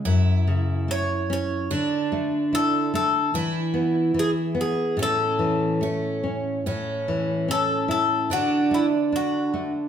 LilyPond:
<<
  \new Staff \with { instrumentName = "Bouzouki" } { \time 2/4 \key a \major \tempo 4 = 73 r4 cis''8 cis''8 | r4 a'8 a'8 | r4 gis'8 gis'8 | a'4. r8 |
r4 a'8 a'8 | fis'8 e'8 fis'8. r16 | }
  \new Staff \with { instrumentName = "Twelve-string acoustic guitar" } { \time 2/4 \key a \major e'2 | d'2 | e'2 | cis'4 cis'4 |
cis'2 | d'2 | }
  \new Staff \with { instrumentName = "Nylon-string guitar" } { \time 2/4 \key a \major fis,8 cis8 a8 cis'8 | d8 a8 e'8 a8 | e8 b8 e8 b8 | a,8 e8 a8 cis'8 |
a,8 e8 cis'8 e'8 | d8 a8 d'8 a8 | }
>>